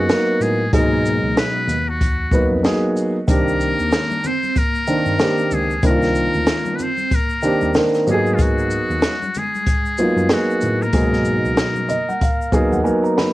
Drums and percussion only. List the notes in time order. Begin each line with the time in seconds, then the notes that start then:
0.09 snare, closed hi-hat
0.41 shaker
0.73 kick, closed hi-hat
1.05 shaker
1.37 snare, closed hi-hat
1.69 closed hi-hat, shaker
2.01 kick, closed hi-hat
2.32 kick, shaker
2.64 snare, closed hi-hat
2.97 shaker
3.28 kick, closed hi-hat, shaker
3.48 shaker
3.61 shaker
3.79 shaker
3.92 snare, closed hi-hat, shaker
4.11 high conga, shaker
4.24 low conga, shaker
4.43 high conga, shaker
4.56 kick, closed hi-hat, shaker
4.75 shaker
4.87 shaker
5.06 high conga, shaker
5.19 snare, closed hi-hat, shaker
5.38 shaker
5.51 low conga, shaker
5.71 shaker
5.83 kick, closed hi-hat, shaker
6.02 snare, shaker
6.15 shaker
6.34 shaker
6.46 snare, closed hi-hat, shaker
6.65 high conga, shaker
6.79 low conga, shaker
6.97 high conga, shaker
7.11 kick, closed hi-hat, shaker
7.29 shaker
7.41 shaker
7.61 high conga, shaker
7.74 snare, closed hi-hat, shaker
7.94 snare, shaker
8.07 low conga, shaker
8.26 shaker
8.38 kick, closed hi-hat, shaker
8.59 shaker
8.71 shaker
8.91 shaker
9.02 snare, closed hi-hat, shaker
9.22 high conga, shaker
9.34 closed hi-hat, low conga, shaker
9.36 shaker
9.55 high conga, shaker
9.66 kick, closed hi-hat, shaker
9.85 shaker
9.98 shaker
10.18 high conga, shaker
10.29 snare, closed hi-hat, shaker
10.50 shaker
10.61 low conga, shaker
10.64 shaker
10.82 shaker
10.93 kick, closed hi-hat, shaker
11.13 snare, shaker
11.25 shaker
11.45 shaker
11.57 snare, closed hi-hat, shaker
11.76 high conga, shaker
11.89 closed hi-hat, low conga, shaker
12.10 high conga, shaker
12.21 kick, closed hi-hat, shaker
12.42 shaker
12.52 kick, low conga, shaker
12.73 high conga, shaker
12.86 shaker
13.05 shaker
13.18 snare, low conga, shaker